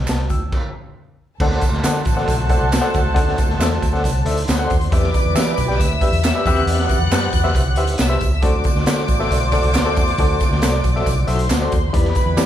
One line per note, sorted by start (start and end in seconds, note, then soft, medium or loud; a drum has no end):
0.00 0.27 C3 medium
0.08 0.30 C2 medium
0.08 0.30 C5 soft
0.08 0.30 A5 medium
0.08 snare medium
0.08 clap medium
0.08 closed hi-hat medium
0.08 tambourine medium
0.30 0.49 D2 medium
0.30 0.72 G5 soft
0.30 0.72 E6 medium
0.30 kick medium
0.30 closed hi-hat medium
0.30 tambourine soft
0.52 kick loud
0.52 crash medium
1.39 1.59 D2 loud
1.39 2.03 D3 medium
1.39 4.67 A3 medium
1.39 4.66 F#4 medium
1.39 4.44 A4 medium
1.39 1.64 A4 medium
1.39 1.64 C5 medium
1.39 4.67 C5 medium
1.39 1.64 D5 medium
1.39 1.64 F#5 medium
1.39 4.44 A5 loud
1.39 kick loud
1.39 crash loud
1.51 snare soft
1.61 kick medium
1.61 closed hi-hat medium
1.61 tambourine medium
1.72 1.82 D2 medium
1.72 snare soft
1.83 2.02 D3 medium
1.83 2.01 A4 medium
1.83 2.01 C5 medium
1.83 2.02 D5 medium
1.83 2.01 F#5 medium
1.83 snare loud
1.83 clap medium
1.83 closed hi-hat medium
1.83 tambourine medium
2.05 2.25 A1 medium
2.05 kick medium
2.05 closed hi-hat medium
2.05 tambourine medium
2.17 2.34 A4 medium
2.17 2.34 C5 medium
2.17 2.34 D5 medium
2.17 2.34 F#5 medium
2.17 snare soft
2.27 2.56 B1 medium
2.27 kick medium
2.27 closed hi-hat loud
2.27 tambourine medium
2.49 2.67 A4 medium
2.49 2.68 C5 medium
2.49 2.67 D5 medium
2.49 2.67 F#5 loud
2.49 kick medium
2.49 closed hi-hat medium
2.49 tambourine soft
2.60 2.79 C2 medium
2.72 snare loud
2.72 clap medium
2.72 closed hi-hat medium
2.72 tambourine medium
2.81 3.00 A4 medium
2.81 2.99 C5 medium
2.81 3.00 D5 medium
2.81 3.00 F#5 loud
2.94 3.04 D2 medium
2.94 kick loud
2.94 closed hi-hat medium
2.94 tambourine soft
3.04 3.14 C#2 medium
3.14 3.35 D2 loud
3.14 3.77 D3 medium
3.14 3.39 A4 medium
3.14 3.38 C5 medium
3.14 3.38 D5 medium
3.14 3.38 F#5 medium
3.14 kick loud
3.14 closed hi-hat medium
3.14 tambourine soft
3.28 snare soft
3.38 kick medium
3.38 closed hi-hat medium
3.38 tambourine medium
3.49 3.58 D2 loud
3.49 snare soft
3.59 3.78 E2 medium
3.59 3.77 A4 medium
3.59 3.77 C5 medium
3.59 3.77 D5 medium
3.59 3.77 E5 medium
3.59 snare loud
3.59 clap loud
3.59 closed hi-hat medium
3.59 tambourine medium
3.82 4.01 D2 medium
3.82 kick medium
3.82 closed hi-hat medium
3.82 tambourine medium
3.93 4.10 A4 medium
3.93 4.10 C5 medium
3.93 4.10 D5 medium
3.93 4.10 F#5 medium
3.93 snare soft
4.04 4.23 C2 medium
4.04 kick medium
4.04 closed hi-hat loud
4.04 tambourine medium
4.25 4.44 D2 medium
4.25 4.43 A4 medium
4.25 4.43 C5 medium
4.25 4.43 D5 medium
4.25 4.43 E5 medium
4.25 closed hi-hat medium
4.25 tambourine soft
4.37 closed hi-hat medium
4.47 4.67 D2 medium
4.47 4.91 C5 medium
4.47 4.91 C6 medium
4.47 snare loud
4.47 clap medium
4.47 closed hi-hat medium
4.47 tambourine medium
4.59 4.76 A4 medium
4.59 4.76 C5 medium
4.59 4.76 D5 medium
4.59 4.76 F#5 loud
4.70 4.89 D#2 medium
4.70 kick loud
4.70 closed hi-hat medium
4.70 tambourine soft
4.81 closed hi-hat soft
4.92 5.11 E2 loud
4.92 5.54 E3 medium
4.92 6.21 G3 medium
4.92 6.21 E4 medium
4.92 5.15 G4 medium
4.92 6.21 B4 medium
4.92 5.15 B4 medium
4.92 5.78 D5 medium
4.92 5.15 D5 medium
4.92 5.15 E5 medium
4.92 5.78 D6 medium
4.92 kick loud
4.92 closed hi-hat medium
4.92 tambourine soft
5.03 snare soft
5.14 kick loud
5.14 closed hi-hat medium
5.14 tambourine medium
5.25 5.34 E2 medium
5.35 5.54 E3 medium
5.35 5.53 G4 medium
5.35 5.53 B4 medium
5.35 5.53 D5 medium
5.35 5.53 E5 medium
5.35 snare loud
5.35 clap medium
5.35 closed hi-hat medium
5.35 tambourine medium
5.57 5.76 B1 medium
5.57 kick medium
5.57 closed hi-hat medium
5.57 tambourine medium
5.68 5.86 G4 medium
5.68 5.86 B4 medium
5.68 5.86 D5 medium
5.68 5.86 G5 medium
5.68 snare soft
5.79 6.08 D2 medium
5.79 6.44 E5 medium
5.79 6.45 E6 medium
5.79 kick medium
5.79 closed hi-hat loud
5.79 tambourine medium
6.01 6.19 G4 medium
6.01 6.19 B4 medium
6.01 6.19 D5 medium
6.01 6.19 E5 medium
6.01 kick medium
6.01 closed hi-hat medium
6.12 6.31 E2 medium
6.12 closed hi-hat medium
6.23 snare loud
6.23 clap medium
6.23 closed hi-hat medium
6.23 tambourine medium
6.35 6.46 G4 medium
6.35 6.46 B4 medium
6.35 6.46 D5 medium
6.35 6.46 E5 loud
6.44 6.55 E2 loud
6.44 7.08 E3 medium
6.44 8.18 B3 medium
6.44 6.99 C4 medium
6.44 8.18 G4 medium
6.44 6.99 G4 medium
6.44 6.99 B4 medium
6.44 8.17 D5 medium
6.44 6.99 E5 loud
6.44 7.96 F#5 medium
6.44 7.96 F#6 loud
6.44 kick loud
6.44 closed hi-hat medium
6.44 tambourine medium
6.55 6.65 D#2 medium
6.55 closed hi-hat medium
6.66 6.86 E2 loud
6.66 closed hi-hat loud
6.66 tambourine soft
6.79 snare soft
6.89 kick medium
6.89 closed hi-hat medium
6.89 tambourine medium
6.99 7.09 E2 loud
7.11 7.30 F#2 medium
7.11 7.29 G4 medium
7.11 7.29 B4 medium
7.11 7.29 C5 medium
7.11 7.29 G5 medium
7.11 snare loud
7.11 clap loud
7.11 closed hi-hat medium
7.11 tambourine medium
7.33 7.52 E2 loud
7.33 kick medium
7.33 closed hi-hat medium
7.33 tambourine medium
7.44 7.61 G4 medium
7.44 7.61 B4 medium
7.44 7.61 C5 medium
7.44 7.61 E5 medium
7.44 snare soft
7.55 7.77 C2 medium
7.55 kick medium
7.55 closed hi-hat loud
7.55 tambourine medium
7.76 7.96 D2 medium
7.76 7.95 G4 medium
7.76 7.95 B4 medium
7.76 7.95 C5 medium
7.76 7.95 E5 medium
7.76 closed hi-hat medium
7.87 closed hi-hat medium
7.98 8.18 C2 medium
7.98 8.43 E6 medium
7.98 snare loud
7.98 clap medium
7.98 closed hi-hat medium
7.98 tambourine medium
8.02 8.44 E5 medium
8.09 8.27 G4 medium
8.09 8.27 B4 medium
8.09 8.27 C5 medium
8.09 8.27 E5 loud
8.21 8.40 C#2 medium
8.21 kick loud
8.21 closed hi-hat medium
8.21 tambourine medium
8.42 8.62 D2 loud
8.42 9.05 D3 medium
8.42 11.68 A3 medium
8.42 8.66 F#4 medium
8.42 11.69 F#4 medium
8.42 8.66 A4 medium
8.42 8.66 C5 medium
8.42 11.69 C5 medium
8.42 8.66 D5 medium
8.42 11.24 D5 medium
8.42 11.25 D6 loud
8.42 kick loud
8.42 closed hi-hat medium
8.42 tambourine soft
8.64 kick medium
8.64 closed hi-hat medium
8.64 tambourine medium
8.75 8.85 D2 medium
8.75 snare soft
8.86 9.06 D3 loud
8.86 9.04 F#4 medium
8.86 9.04 A4 medium
8.86 9.04 C5 medium
8.86 9.04 D5 medium
8.86 snare loud
8.86 clap medium
8.86 closed hi-hat medium
8.86 tambourine medium
9.08 9.28 A1 loud
9.08 kick medium
9.08 closed hi-hat medium
9.08 tambourine soft
9.20 9.37 F#4 medium
9.20 9.37 A4 medium
9.20 9.37 C5 medium
9.20 9.37 E5 medium
9.20 snare soft
9.31 9.59 B1 medium
9.31 kick medium
9.31 closed hi-hat medium
9.31 tambourine medium
9.52 9.70 F#4 medium
9.52 9.70 A4 medium
9.52 9.70 C5 medium
9.52 9.70 D5 medium
9.52 kick medium
9.52 closed hi-hat medium
9.52 tambourine soft
9.63 9.73 C2 medium
9.63 closed hi-hat medium
9.74 9.97 D2 medium
9.74 snare loud
9.74 clap medium
9.74 closed hi-hat medium
9.74 tambourine medium
9.85 10.03 F#4 medium
9.85 10.03 A4 medium
9.85 10.03 C5 medium
9.85 10.03 D5 loud
9.96 10.16 E2 medium
9.96 kick loud
9.96 closed hi-hat medium
9.96 tambourine soft
10.07 closed hi-hat medium
10.18 10.37 D2 loud
10.18 10.81 D3 medium
10.18 10.42 F#4 medium
10.18 10.42 A4 medium
10.18 10.42 C5 medium
10.18 10.42 D5 loud
10.18 kick loud
10.18 closed hi-hat medium
10.40 kick medium
10.40 closed hi-hat medium
10.40 tambourine medium
10.51 10.61 D2 medium
10.51 snare soft
10.62 10.81 C2 loud
10.62 10.80 F#4 medium
10.62 10.79 A4 medium
10.62 10.80 C5 medium
10.62 10.80 D5 medium
10.62 snare loud
10.62 clap loud
10.62 closed hi-hat medium
10.62 tambourine medium
10.84 11.03 B1 medium
10.84 kick medium
10.84 closed hi-hat medium
10.84 tambourine soft
10.95 11.13 F#4 medium
10.95 11.13 A4 medium
10.95 11.13 C5 medium
10.95 11.13 E5 medium
10.95 snare soft
11.06 11.25 C2 loud
11.06 kick medium
11.06 closed hi-hat loud
11.06 tambourine medium
11.27 11.47 B1 medium
11.27 11.45 F#4 medium
11.27 11.45 A4 medium
11.27 11.45 C5 medium
11.27 11.94 C5 medium
11.27 11.45 E5 loud
11.27 11.94 C6 medium
11.27 closed hi-hat medium
11.27 tambourine soft
11.39 closed hi-hat medium
11.49 11.68 D2 medium
11.49 snare loud
11.49 clap medium
11.49 closed hi-hat medium
11.49 tambourine medium
11.61 11.78 F#4 medium
11.61 11.78 A4 medium
11.61 11.78 C5 medium
11.61 11.78 D5 loud
11.72 11.91 D#2 medium
11.72 kick loud
11.72 closed hi-hat medium
11.72 tambourine soft
11.93 12.12 E2 loud
11.93 12.46 E3 medium
11.93 12.46 G3 medium
11.93 12.16 E4 medium
11.93 12.46 E4 medium
11.93 12.16 G4 medium
11.93 12.17 B4 medium
11.93 12.46 B4 medium
11.93 12.46 B4 loud
11.93 12.16 D5 medium
11.93 12.46 B5 loud
11.93 kick loud
11.93 closed hi-hat medium
12.05 snare soft
12.15 kick medium
12.15 closed hi-hat medium
12.15 tambourine medium
12.26 12.36 E2 loud
12.37 12.46 E3 loud
12.37 12.46 E4 medium
12.37 12.46 G4 medium
12.37 12.46 B4 medium
12.37 12.46 D5 medium
12.37 snare loud
12.37 clap loud
12.37 closed hi-hat medium
12.37 tambourine medium